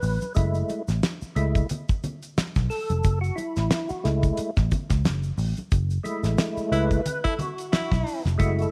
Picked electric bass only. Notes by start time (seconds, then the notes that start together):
0.03 A1
0.37 F#1
0.88 A1
1.22 muted picked electric bass stroke
1.36 C#2
2.38 muted picked electric bass stroke
2.56 B1
2.90 F1
3.05 F#1
3.57 A1
3.90 muted picked electric bass stroke
4.05 C#2
4.39 muted picked electric bass stroke
4.58 A1
4.90 C#2
5.05 F#1
5.38 A1
5.72 F#1
6.24 A1
6.57 muted picked electric bass stroke
6.72 C#2
7.73 muted picked electric bass stroke
7.92 B1
8.25 F1
8.40 F#1